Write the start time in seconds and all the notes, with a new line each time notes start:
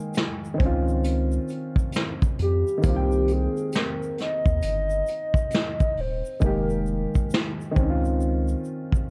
Already playing: D#3 G#3 A#3 G5
0.14 snare, closed hi-hat, shaker
0.45 shaker
0.54 D#3 C4
0.60 C#2 C#4, kick, closed hi-hat
0.66 F4
0.88 shaker
1.04 closed hi-hat, shaker
1.32 shaker
1.48 closed hi-hat, shaker
1.76 kick, shaker
1.92 closed hi-hat, shaker
1.96 snare
2.22 kick, shaker
2.39 F2 G4, closed hi-hat
2.67 shaker
2.78 D#3
2.82 C2 A#3 C4, kick, closed hi-hat, shaker
2.89 F4
2.96 G5
3.12 shaker
3.28 closed hi-hat, shaker
3.32 G#4
3.57 shaker
3.72 A#4, snare, closed hi-hat, shaker
4.03 shaker
4.18 D#5, snare, closed hi-hat
4.46 D#2, kick, shaker
4.62 G1, closed hi-hat, shaker
4.90 shaker
5.07 closed hi-hat, shaker
5.34 kick, shaker
5.50 closed hi-hat, shaker
5.54 snare
5.80 kick, shaker
5.97 D#1 C5, open hi-hat
6.25 shaker
6.40 F1 D#3 G#3 A#3, kick, shaker
6.44 G4 A#4
6.70 shaker
6.86 shaker
7.15 kick, shaker
7.30 snare, shaker
7.61 shaker
7.71 D#3 C4
7.76 C#2 C#4, kick, shaker
7.84 D#4
7.90 F4
8.05 shaker
8.21 shaker
8.48 shaker
8.65 shaker
8.92 kick, shaker